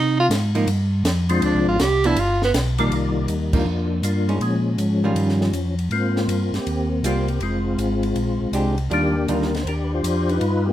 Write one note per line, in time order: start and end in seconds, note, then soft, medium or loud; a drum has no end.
0.00 0.29 C3 loud
0.00 0.18 D#4 medium
0.20 0.27 F4 loud
0.30 0.66 G#2 loud
0.30 snare medium
0.30 hi-hat pedal medium
0.30 ride medium
0.55 0.67 F3 medium
0.55 0.67 A#3 medium
0.55 0.67 D#4 medium
0.55 ride medium
0.67 1.03 G2 loud
0.67 ride medium
1.04 1.41 F2 loud
1.04 snare medium
1.04 hi-hat pedal medium
1.04 ride medium
1.29 1.77 F3 medium
1.29 1.77 G#3 medium
1.29 1.77 C4 medium
1.29 1.77 D4 medium
1.29 1.77 F4 loud
1.29 ride medium
1.42 1.54 D2 loud
1.42 1.67 D4 medium
1.42 ride medium
1.54 1.67 C2 medium
1.66 1.78 G#1 medium
1.66 1.83 F4 medium
1.79 2.16 C2 medium
1.79 2.07 G4 loud
1.79 snare medium
1.79 hi-hat pedal medium
1.79 ride medium
2.04 2.16 F3 medium
2.04 2.16 B3 medium
2.04 2.16 D4 medium
2.04 2.22 E4 loud
2.04 ride medium
2.16 2.53 G1 loud
2.16 2.43 F4 medium
2.16 ride medium
2.42 2.51 B3 medium
2.42 snare soft
2.54 2.90 B1 loud
2.54 snare medium
2.54 hi-hat pedal medium
2.54 ride medium
2.78 3.26 C2 medium
2.78 3.26 D#3 medium
2.78 2.90 F3 medium
2.78 2.92 G3 medium
2.78 2.92 A#3 medium
2.78 2.91 A#3 medium
2.78 2.91 D#4 medium
2.78 3.27 F4 medium
2.78 3.27 D5 medium
2.78 ride medium
2.91 3.27 C2 medium
2.91 3.63 G3 medium
2.91 3.54 A#3 medium
2.91 3.51 D#4 medium
2.91 ride medium
3.28 3.65 D#2 medium
3.28 hi-hat pedal medium
3.28 ride medium
3.53 3.65 F3 medium
3.53 3.65 A#3 medium
3.53 4.03 A#3 medium
3.53 4.03 D4 medium
3.53 3.65 D#4 medium
3.53 3.89 F4 medium
3.53 kick medium
3.53 crash medium
3.65 4.02 F2 medium
4.02 4.39 G2 medium
4.02 4.39 A#3 medium
4.02 4.39 D4 soft
4.02 4.39 F4 medium
4.02 hi-hat pedal medium
4.02 ride medium
4.28 4.40 G#3 soft
4.28 4.40 C#4 medium
4.28 4.40 D#4 medium
4.28 ride soft
4.40 4.77 A#2 medium
4.40 5.75 F3 medium
4.40 5.12 G#3 soft
4.40 5.75 C#4 medium
4.40 ride medium
4.78 5.14 G#2 medium
4.78 hi-hat pedal soft
4.78 ride medium
5.04 5.51 D#3 medium
5.04 5.51 G3 medium
5.04 5.51 C#4 medium
5.04 5.52 F4 medium
5.15 5.52 G2 medium
5.15 ride medium
5.29 snare soft
5.41 snare soft
5.52 5.89 F2 medium
5.52 hi-hat pedal medium
5.52 ride medium
5.79 ride soft
5.90 6.27 G#2 medium
5.90 6.54 A#3 medium
5.90 6.54 C4 medium
5.90 6.56 F4 medium
5.90 ride medium
6.16 snare soft
6.28 6.51 G2 medium
6.28 hi-hat pedal soft
6.28 ride medium
6.53 6.59 G2 soft
6.53 7.05 A#3 medium
6.53 7.04 C4 medium
6.53 6.89 G4 medium
6.53 snare soft
6.53 ride soft
6.66 7.02 D#2 medium
6.66 ride medium
7.03 7.40 C2 medium
7.03 7.26 G3 medium
7.03 7.40 A#3 medium
7.03 7.27 C4 medium
7.03 7.39 C4 medium
7.03 7.27 F4 medium
7.03 7.43 G4 medium
7.03 hi-hat pedal medium
7.03 ride medium
7.28 ride soft
7.40 7.77 F1 medium
7.40 8.75 G#3 medium
7.40 8.75 C4 medium
7.40 8.75 F4 medium
7.40 ride medium
7.77 8.14 G#1 medium
7.77 hi-hat pedal soft
7.77 ride medium
8.03 ride soft
8.16 8.39 A#1 medium
8.16 ride medium
8.40 8.47 A#1 soft
8.52 8.89 C2 medium
8.52 8.76 G#3 medium
8.52 8.76 D4 medium
8.52 8.76 G4 medium
8.52 hi-hat pedal medium
8.52 ride medium
8.78 ride soft
8.90 9.27 D#2 medium
8.90 9.13 D#3 medium
8.90 9.13 G3 medium
8.90 9.63 A#3 medium
8.90 9.13 D4 medium
8.90 9.13 F4 medium
8.90 9.27 G4 medium
8.90 ride medium
8.94 9.63 D4 medium
9.28 9.65 D2 medium
9.28 9.51 D#3 medium
9.28 9.51 G3 medium
9.28 9.51 D4 medium
9.28 9.51 F4 medium
9.28 9.55 A#4 medium
9.28 hi-hat pedal soft
9.28 ride medium
9.42 snare soft
9.55 9.67 C5 medium
9.55 snare soft
9.55 ride soft
9.65 10.01 D#2 medium
9.65 9.74 A#4 medium
9.65 ride medium
9.69 10.38 D4 medium
9.69 9.94 G4 medium
9.84 9.92 B4 medium
9.94 10.30 F4 medium
9.94 10.39 G4 medium
9.94 10.31 C5 loud
10.03 10.40 F2 medium
10.03 hi-hat pedal medium
10.03 ride medium
10.29 10.73 D#4 medium
10.29 10.73 F4 medium
10.29 10.64 B4 loud
10.29 ride soft
10.41 10.73 G2 medium
10.41 ride medium
10.66 10.73 A#3 medium
10.66 10.73 B3 soft
10.66 10.73 G4 medium